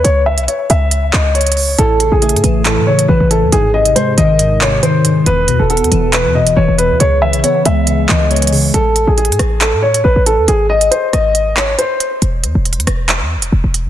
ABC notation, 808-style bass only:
X:1
M:4/4
L:1/16
Q:1/4=138
K:C#m
V:1 name="808-style bass" clef=bass
C,,3 B,,, z2 C,,4 C,,6 | A,,,3 A,,,2 A,, A,,,3 A,,3 A,,, A,,,2 E,, | G,,,4 z2 G,,,6 z4 | E,,,2 E,, E,,,2 E,, E,,,3 E,,3/2 E,,,3/2 E,,, E,,,2 E,, |
C,,3 B,,, z2 C,,4 C,,6 | A,,,3 A,,,2 A,, A,,,3 A,,3 A,,, A,,,2 E,, | G,,,4 z2 G,,,6 z4 | E,,,2 E,, E,,,2 E,, E,,,3 E,,3/2 E,,,3/2 E,,, E,,,2 E,, |]